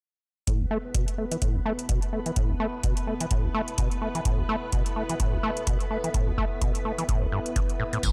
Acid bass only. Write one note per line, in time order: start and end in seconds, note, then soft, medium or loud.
0.47 0.62 A2 medium
0.60 0.66 A1 loud
0.71 0.78 A3 medium
0.95 1.06 B2 medium
1.18 1.25 A3 medium
1.31 1.37 E3 medium
1.42 1.57 A2 medium
1.55 1.61 A1 loud
1.66 1.73 A3 loud
1.89 2.00 B2 medium
2.13 2.20 A3 medium
2.26 2.32 E3 medium
2.36 2.51 A2 medium
2.50 2.55 A1 medium
2.60 2.67 A3 medium
2.84 2.95 B2 medium
3.07 3.15 A3 medium
3.21 3.26 E3 medium
3.31 3.46 A2 medium
3.44 3.50 A1 loud
3.54 3.62 A3 medium
3.78 3.89 B2 medium
4.02 4.09 A3 medium
4.15 4.21 E3 medium
4.25 4.40 A2 medium
4.39 4.44 A1 loud
4.49 4.56 A3 medium
4.72 4.84 B2 medium
4.96 5.03 A3 medium
5.10 5.15 E3 medium
5.20 5.34 A2 medium
5.33 5.39 A1 medium
5.43 5.51 A3 medium
5.67 5.78 B2 medium
5.91 5.98 A3 medium
6.04 6.10 E3 medium
6.14 6.29 A2 medium
6.28 6.33 A1 medium
6.38 6.45 A3 loud
6.61 6.72 B2 medium
6.85 6.92 A3 medium
6.98 7.04 E3 medium
7.09 7.23 A2 medium
7.22 7.28 A1 loud
7.32 7.40 G2 medium
7.56 7.60 A2 medium
7.80 7.84 A2 medium
7.93 7.99 A2 medium
8.03 8.12 A2 medium